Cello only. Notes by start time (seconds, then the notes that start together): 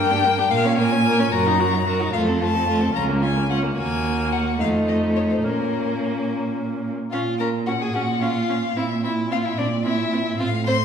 Already playing: G2
0.50 A#2
1.32 F#2
2.14 F2
2.95 C#2
3.77 D#2
4.60 F2
5.43 A#2
7.12 A#2
7.95 A#2
8.76 A#2
9.58 A#2
10.39 A2